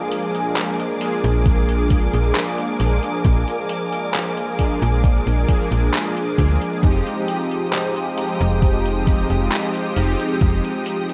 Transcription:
Already playing: analog polysynth F3 G#3 A#3 D4 G#4, string section A#4 G#5 D6
0.12 closed hi-hat
0.35 closed hi-hat
0.56 clap, closed hi-hat
0.80 closed hi-hat
0.99 analog polysynth F3 G#3 A#3 D4 G#4, closed hi-hat
1.24 fm bass A#1, closed hi-hat
1.46 kick, closed hi-hat
1.69 closed hi-hat
1.90 kick, closed hi-hat
2.13 fm bass A#1, closed hi-hat
2.35 clap, closed hi-hat
2.58 closed hi-hat
2.79 fm bass A#1, analog polysynth F3 G#3 A#3 D4 G#4, closed hi-hat
3.03 closed hi-hat
3.23 fm bass A#1, analog polysynth F3 G#3 A#3 D4 G#4, kick, closed hi-hat
3.48 closed hi-hat
3.69 closed hi-hat
3.93 closed hi-hat
4.14 clap, closed hi-hat
4.37 closed hi-hat
4.58 analog polysynth F3 G#3 A#3 D4 G#4, kick, closed hi-hat
4.82 fm bass A#1, closed hi-hat
5.04 kick, closed hi-hat
5.27 fm bass A#1, closed hi-hat
5.48 analog polysynth F3 G#3 A#3 D4 G#4, kick, closed hi-hat
5.72 fm bass A#1, closed hi-hat
5.94 clap, closed hi-hat
6.17 closed hi-hat
6.38 fm bass D2, analog polysynth F3 G#3 A#3 D4 G#4, kick, closed hi-hat
6.61 closed hi-hat
6.81 fm bass F1, analog polysynth F3 G#3 C4 D#4 G4, string section G#3 G5 D#6, kick, closed hi-hat
7.07 closed hi-hat
7.28 closed hi-hat
7.51 closed hi-hat
7.73 clap, closed hi-hat
7.96 closed hi-hat
8.16 analog polysynth F3 G#3 C4 D#4 G4, closed hi-hat
8.41 fm bass F1, closed hi-hat
8.62 kick, closed hi-hat
8.86 closed hi-hat
9.07 kick, closed hi-hat
9.30 fm bass F1, closed hi-hat
9.52 clap, closed hi-hat
9.75 closed hi-hat
9.96 fm bass F1, analog polysynth F3 G#3 C4 D#4 G4, closed hi-hat
10.20 closed hi-hat
10.40 fm bass F1, analog polysynth F3 G#3 C4 D#4 G4, kick, closed hi-hat
10.64 closed hi-hat
10.86 closed hi-hat
11.09 closed hi-hat

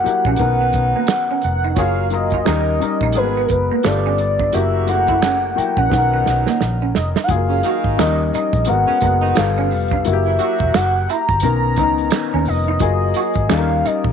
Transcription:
Already playing: upright piano F#3 A#3 E4 G4, soft synth lead F#5
0.04 upright piano F#3 A#3 E4 G4, muted fingered electric bass stroke, muted clean electric guitar stroke, closed hi-hat
0.25 fingered electric bass A#1, clean electric guitar C#4, kick
0.36 upright piano D#3 B3 C#4, saxophone section F#3 D#4 B4, kick, closed hi-hat
0.40 fingered electric bass B1, upright piano A#4
0.61 clean electric guitar B3
0.73 fingered electric bass B1, muted clean electric guitar stroke, kick, closed hi-hat
0.96 clean electric guitar A#3
1.07 finger snap, snare, closed hi-hat
1.31 clean electric guitar C#4
1.42 fingered electric bass F1, soft synth lead F#5, muted clean electric guitar stroke, closed hi-hat
1.64 clean electric guitar D#4
1.76 fingered electric bass F#1, upright piano F#3 A#3 F4 G#4, saxophone section A#3 G#4 C#5, clean electric guitar F#4, soft synth lead F5, kick, closed hi-hat
2.10 upright piano F#3 A#3 F4 A#4, soft synth lead D#5, muted clean electric guitar stroke, closed hi-hat
2.30 clean electric guitar F4, kick, closed hi-hat
2.45 fingered electric bass D#2, upright piano G3 C#4 D#4 A#4, saxophone section G3 D#4 A#4, clean electric guitar D#4, finger snap, snare, closed hi-hat
2.80 upright piano G3 C#4 D#4 A#4, muted clean electric guitar stroke, closed hi-hat
3.01 fingered electric bass A#1, clean electric guitar D#4, kick
3.12 saxophone section D#3 B3 G#4, upright piano G#3 A#3 F#4 A#4, closed hi-hat
3.17 fingered electric bass G#1, soft synth lead B4
3.22 upright piano B3
3.37 clean electric guitar B3
3.45 soft synth lead A#4, closed hi-hat
3.50 fingered electric bass F#1, soft synth lead B4, muted clean electric guitar stroke, kick
3.71 clean electric guitar A#3
3.83 fingered electric bass G1, saxophone section D3 B3 G4, upright piano G3 A3 F4 A4, soft synth lead D5, finger snap, snare, closed hi-hat
3.91 upright piano B3
4.06 clean electric guitar C#4
4.18 muted clean electric guitar stroke, closed hi-hat
4.39 clean electric guitar D4, kick
4.53 fingered electric bass F#1, saxophone section C#3 A#3 F#4, upright piano F#3 A#3 E4 G4, clean electric guitar F#4, soft synth lead E5, closed hi-hat
4.87 upright piano F#3 A3 E4 F#4, soft synth lead F#5, muted clean electric guitar stroke, closed hi-hat
4.94 upright piano A#3
5.07 clean electric guitar E4, kick, closed hi-hat
5.22 clean electric guitar C#4, finger snap, snare, closed hi-hat
5.56 upright piano F#3 A#3 E4 F#4, soft synth lead G5, muted clean electric guitar stroke, muted fingered electric bass stroke, closed hi-hat
5.77 fingered electric bass A#1, clean electric guitar C#4, soft synth lead F#5, kick
5.89 fingered electric bass B1, saxophone section A#2 F#3 D#4, upright piano D#3 C#4 G#4 B4, kick, snare
5.98 upright piano A#4
6.13 clean electric guitar B3
6.26 fingered electric bass B1, muted clean electric guitar stroke, snare
6.46 clean electric guitar A#3, snare
6.61 fingered electric bass A#1, snare
6.82 clean electric guitar C#4
6.95 fingered electric bass F1, soft synth lead D#5, muted clean electric guitar stroke, snare
7.16 clean electric guitar D#4, snare
7.24 soft synth lead F#5
7.28 fingered electric bass F#1, upright piano F#3 G#3 F4 G#4, soft synth lead F5, kick, closed hi-hat
7.36 upright piano A#3
7.50 saxophone section C#3 C#4
7.63 saxophone section D#3 D#4, clean electric guitar F#4, closed hi-hat
7.84 fingered electric bass G#1, kick
7.97 fingered electric bass D#2, upright piano F3 C#4 D#4 A#4, soft synth lead D#5, finger snap, snare, closed hi-hat
8.04 upright piano G3
8.34 clean electric guitar D#4, soft synth lead D#5, muted fingered electric bass stroke, closed hi-hat
8.53 fingered electric bass A#1, kick, closed hi-hat
8.65 upright piano G#3 B3 F#4 A#4, closed hi-hat
8.69 fingered electric bass G#1, soft synth lead F#5
8.87 saxophone section C#3 C#4, muted fingered electric bass stroke
9.01 fingered electric bass F#1, upright piano G#3 B3 F#4 A#4, clean electric guitar B3, kick, closed hi-hat
9.21 saxophone section D#3 D#4
9.35 fingered electric bass G1, upright piano G3 B3 F4 A4, soft synth lead F5, finger snap, snare, closed hi-hat
9.58 clean electric guitar C#4
9.70 fingered electric bass F1, muted clean electric guitar stroke, open hi-hat
9.88 kick, closed hi-hat
9.93 clean electric guitar D4
10.05 fingered electric bass F#1, upright piano F#3 A#3 E4 F#4, soft synth lead E5, closed hi-hat
10.13 upright piano G4
10.25 saxophone section E3 E4
10.39 saxophone section F#3 F#4, clean electric guitar F#4, closed hi-hat
10.59 fingered electric bass E1, kick, closed hi-hat
10.74 fingered electric bass F#1, soft synth lead F#5, finger snap, snare, closed hi-hat
11.09 clean electric guitar E4, soft synth lead A#5, closed hi-hat
11.29 fingered electric bass G1, kick, closed hi-hat
11.40 upright piano D#3 B3 C#4, kick, closed hi-hat
11.44 fingered electric bass B1, upright piano A#4
11.76 fingered electric bass C#2, upright piano D#3 B3 C#4 D#4, clean electric guitar B3, kick, closed hi-hat
11.98 closed hi-hat
12.11 finger snap, snare, closed hi-hat
12.34 fingered electric bass D#2, clean electric guitar C#4
12.45 fingered electric bass F1, soft synth lead D#5, muted clean electric guitar stroke, open hi-hat
12.64 closed hi-hat
12.68 clean electric guitar D#4
12.79 fingered electric bass F#1, upright piano F#3 A#3 F4 G#4, kick, closed hi-hat
13.14 clean electric guitar F#4, closed hi-hat
13.34 fingered electric bass G#1, kick, closed hi-hat
13.49 fingered electric bass D#2, upright piano G3 C#4 D#4 A4, soft synth lead F5, finger snap, snare, closed hi-hat
13.57 upright piano A#4
13.86 clean electric guitar D#4, soft synth lead D#5, closed hi-hat
14.04 fingered electric bass A#1, kick

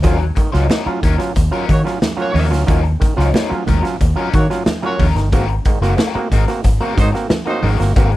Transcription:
0.03 fingered electric bass D#2, overdriven electric guitar F#3 C#4 D#4 A#4, clav F#3 C#4 F4, kick, closed hi-hat, muted conga
0.19 muted overdriven electric guitar stroke, closed hi-hat
0.35 clav D#3, muted overdriven electric guitar stroke, kick, closed hi-hat
0.52 fingered electric bass C#2, clav F#3 C#4 F4, overdriven electric guitar F#3 C#4 D#4 C5, snare, closed hi-hat
0.70 overdriven electric guitar F#3 C#4 D#4 A#4, snare, high conga
0.86 clav F#3 C#4 F4, muted fingered electric bass stroke, muted overdriven electric guitar stroke, closed hi-hat
1.02 fingered electric bass D#2, clav D#3, overdriven electric guitar F#3 C#4 D#4 A#4, kick, closed hi-hat
1.18 clav F#3 C#4 F4, muted overdriven electric guitar stroke, snare, closed hi-hat
1.36 fingered electric bass D#2, muted overdriven electric guitar stroke, kick, closed hi-hat, muted conga
1.51 clav F#3 C#4 F4, overdriven electric guitar F#3 C#4 D#4 A#4, closed hi-hat
1.68 clav D#3, fingered electric bass D#3, horn section A#3 F#4 C#5, muted overdriven electric guitar stroke, kick, closed hi-hat, muted conga
1.84 clav F#3 C#4 F4, muted overdriven electric guitar stroke, snare, closed hi-hat
2.02 muted overdriven electric guitar stroke, snare, high conga
2.17 clav F#3 C#4 F4, horn section A#3 F#4 C#5, closed hi-hat
2.34 fingered electric bass D#2, clav D#3, overdriven electric guitar F#3 C#4 D#4 A#4, open hi-hat, high conga
2.50 fingered electric bass D2, clav F#3 C#4 F4, muted overdriven electric guitar stroke, snare, closed hi-hat
2.66 fingered electric bass D#2, clav F#3 C#4 F4, overdriven electric guitar F#3 C#4 D#4 A#4, kick, closed hi-hat, muted conga
2.84 muted overdriven electric guitar stroke, closed hi-hat
3.00 clav D#3, muted overdriven electric guitar stroke, kick, closed hi-hat
3.17 fingered electric bass C#2, clav F#3 C#4 F4, overdriven electric guitar F#3 C#4 D#4 C5, snare, closed hi-hat
3.34 overdriven electric guitar F#3 C#4 D#4 A#4, snare, high conga
3.49 clav F#3 C#4 F4, muted overdriven electric guitar stroke, muted fingered electric bass stroke, closed hi-hat
3.66 fingered electric bass D#2, clav D#3, overdriven electric guitar F#3 C#4 D#4 A#4, kick, closed hi-hat, low conga
3.82 clav F#3 C#4 F4, muted overdriven electric guitar stroke, snare, closed hi-hat
4.00 fingered electric bass D#2, muted overdriven electric guitar stroke, kick, closed hi-hat
4.16 clav F#3 C#4 F4, overdriven electric guitar F#3 C#4 D#4 A#4, closed hi-hat
4.33 clav D#3, fingered electric bass D#3, horn section A#3 F#4 C#5, muted overdriven electric guitar stroke, kick, closed hi-hat, muted conga
4.50 clav F#3 C#4 F4, muted overdriven electric guitar stroke, snare, closed hi-hat
4.66 muted overdriven electric guitar stroke, snare, high conga
4.82 clav F#3 C#4 F4, horn section A#3 F#4 C#5, muted overdriven electric guitar stroke, closed hi-hat
4.99 fingered electric bass D#2, overdriven electric guitar F#3 C#4 D#4 A#4, kick, open hi-hat, high conga
5.15 fingered electric bass G1, clav D#3, muted overdriven electric guitar stroke, snare, closed hi-hat
5.32 fingered electric bass G#1, overdriven electric guitar G#3 C4 F#4 A#4, clav A#3 C4 F#4, kick, closed hi-hat, muted conga
5.49 muted overdriven electric guitar stroke, closed hi-hat
5.65 clav G#2 D#3, muted overdriven electric guitar stroke, kick, closed hi-hat
5.81 fingered electric bass F#1, overdriven electric guitar G#3 C4 F#4 C5, clav A#3 C4 F#4, snare, closed hi-hat
5.97 overdriven electric guitar G#3 C4 F#4 A#4, snare, high conga
6.15 clav A#3 C4 F#4, muted overdriven electric guitar stroke, muted fingered electric bass stroke, closed hi-hat
6.31 fingered electric bass G#1, clav G#2 D#3, overdriven electric guitar G#3 C4 F#4 A#4, kick, closed hi-hat
6.48 clav A#3 C4 F#4, muted overdriven electric guitar stroke, snare, closed hi-hat
6.64 fingered electric bass G#1, muted overdriven electric guitar stroke, kick, closed hi-hat, muted conga
6.81 overdriven electric guitar G#3 C4 F#4 A#4, clav A#3 C4 F#4, closed hi-hat
6.97 clav G#2 D#3, fingered electric bass G#2, horn section F#3 D#4 C5, muted overdriven electric guitar stroke, kick, closed hi-hat, muted conga
7.12 clav A#3 C4 F#4, muted overdriven electric guitar stroke, snare, closed hi-hat
7.29 muted overdriven electric guitar stroke, snare, high conga
7.46 horn section F#3 D#4 C5, clav A#3 C4 F#4, muted overdriven electric guitar stroke, closed hi-hat
7.63 fingered electric bass G#1, clav G#2 D#3, overdriven electric guitar G#3 C4 F#4 A#4, open hi-hat, high conga
7.79 fingered electric bass G1, clav A#3 C4 F#4, muted overdriven electric guitar stroke, snare, closed hi-hat
7.96 fingered electric bass G#1, overdriven electric guitar G#3 C4 F#4 A#4, clav A#3 C4 F#4, kick, closed hi-hat, muted conga
8.11 muted overdriven electric guitar stroke, closed hi-hat

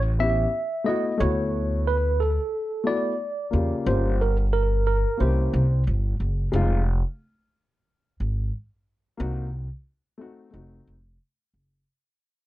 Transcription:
Already playing: upright bass A1
0.19 grand piano B3 C#4 E4, tine electric piano E5
0.23 grand piano G4
0.84 grand piano A3 B3 E4 F#4, tine electric piano D#5
1.18 upright bass D2, grand piano A3 B3 E4 F#4, tine electric piano C#5
1.87 tine electric piano B4
2.20 tine electric piano A4
2.84 grand piano A3 B3 E4 F#4, tine electric piano D5
3.51 upright bass E2, grand piano C#3 A#3 F4
3.55 grand piano G4
3.85 upright bass G1, grand piano A#3 C#4 F4 G4, tine electric piano C5
4.21 tine electric piano A#4
4.53 tine electric piano A#4
4.87 tine electric piano A#4
5.17 upright bass C2, grand piano A#3 C#4 E4, tine electric piano C5
5.21 grand piano G4
5.53 upright bass C2
5.87 upright bass G1
6.20 upright bass F#1
6.52 upright bass F1, grand piano G#3 C4 D#4 F4
8.20 upright bass G#1
9.17 upright bass C2, grand piano A#3 C4 D#4 F#4
10.18 grand piano A3 C4 D#4 F#4
10.51 upright bass F1, grand piano A3 C4 D#4 F#4
10.87 upright bass F1
11.54 upright bass F#1

